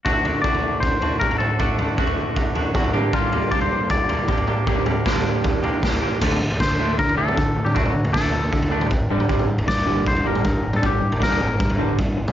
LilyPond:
<<
  \new Staff \with { instrumentName = "Clean electric guitar" } { \time 4/4 \key d \phrygian \tempo 4 = 156 fis'4 d''4 c''4 bes'8 a'8~ | a'4 r2. | f'4 d''16 c''8. d''2~ | d''2. r4 |
r4 c''4 bes'8 a'4~ a'16 g'16 | fis'4 a'2 r4 | r4 d''4 c''8 bes'4~ bes'16 a'16 | g'4 bes'2 r4 | }
  \new Staff \with { instrumentName = "Distorted electric guitar" } { \time 4/4 \key d \phrygian <d a d' fis'>8 <a d' fis'>8 <d a d' fis'>4. <a d' fis'>8 <d a d' fis'>8 <a d' fis'>8 | <d a d' fis'>8 <a d' fis'>8 <d a d' fis'>4. <a d' fis'>8 <d a d' fis'>8 <g, d g bes d' g'>8 | <g, d g bes d' g'>8 <g bes d' g'>8 <g, d g bes d' g'>4. <g bes d' g'>8 <g bes d' g'>8 <g bes d' g'>8 | <g, d g bes d' g'>8 <g bes d' g'>8 <g, d g bes d' g'>4. <g bes d' g'>8 <g bes d' g'>8 <g bes d' g'>8 |
<d a d'>8 <d a>8 <d a>8 <d a d'>8 <d a>8 <d a d'>8 <d a>8 <d a>8 | <d a d'>8 <d a>8 <d a d'>8 <d a>8 <d a>8 <d a d'>8 <d a>8 <g, d g>8 | <g, d g>8 <g, d>8 <g, d>8 <g, d g>8 <g, d>8 <g, d g>8 <g, d>8 <g, d>8 | <g, d g>8 <g, d>8 <g, d g>8 <g, d>8 <g, d>8 <g, d g>8 <g, d>8 <g, d>8 | }
  \new Staff \with { instrumentName = "Picked electric bass" } { \clef bass \time 4/4 \key d \phrygian r1 | r1 | r1 | r1 |
d,8 d16 d,16 d8 d,8 d8 d,8 d8 d,16 d16 | d,8 d16 d,16 d8 d,8 d8 d,8 aes,,8 g,,16 g,16 | g,,8 g,16 g,,16 g,8 g,,8 g,8 g,,8 g,8 g,,16 g,16 | g,,8 g,16 g,,16 g,8 g,,8 g,8 g,,8 g,8 g,,16 c,16 | }
  \new DrumStaff \with { instrumentName = "Drums" } \drummode { \time 4/4 <bd tomfh>8 tomfh8 bd16 tomfh8. <bd tomfh>8 tomfh8 <bd toml>16 tomfh16 toml8 | <bd tomfh>8 tomfh8 bd16 tomfh8. <bd tomfh>8 tomfh8 <bd toml>16 tomfh16 toml8 | <bd tomfh>8 tomfh8 bd16 tomfh8. <bd tomfh>8 tomfh8 <bd toml>16 tomfh16 toml8 | <bd tomfh>8 <tomfh toml>8 <bd sn>16 <tomfh toml>8. <bd tomfh>8 tomfh8 <bd sn>16 tomfh8. |
<cymc bd tomfh>16 toml8 tomfh16 <bd sn>16 tomfh8. bd16 tomfh8 toml16 <bd tomfh>8. toml16 | <bd tomfh>16 toml8 tomfh16 <bd sn>16 tomfh8. bd16 tomfh8 toml16 <bd tomfh>8. toml16 | <bd tomfh>16 toml8 tomfh16 <bd sn>16 tomfh8. bd16 tomfh8 toml16 <bd tomfh>8. toml16 | <bd tomfh>8. tomfh16 <bd sn>16 tomfh16 toml8 bd16 tomfh8. <bd tomfh>8. toml16 | }
>>